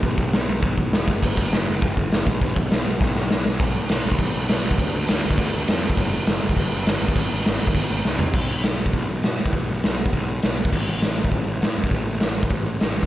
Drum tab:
CC |----------------|x---------------|----------------|x-x-x-x-x-x-x-x-|
HH |o---o---o---o---|----o---o---o---|o---o-----------|----------------|
SD |----o-------o---|----o-------o---|----o---o-o-o-o-|----o-------o---|
FT |----------------|----------------|----------------|----------------|
BD |o-o-----o-o---o-|o-o-----o-o---o-|o-o-----o-------|o------oo------o|

CC |x-x-x-x-x-x-x-x-|x-x-x-x-x-x-x-x-|x-x-x-x-x-x-----|x---------------|
HH |----------------|----------------|----------------|--o-o-o-o-o-o-o-|
SD |----o-------o---|----o-------o---|----o-------o---|----o-------o---|
FT |----------------|----------------|--------------o-|----------------|
BD |o------oo------o|o------oo------o|o------oo-------|o------oo------o|

CC |----------------|x---------------|----------------|
HH |o-o-o-o-o-o-o-o-|--o-o-o-o-o-o-o-|o-o-o-o-o-o-o-o-|
SD |----o-------o---|----o-------o---|----o-------o---|
FT |----------------|----------------|----------------|
BD |o------oo------o|o------oo------o|o------oo------o|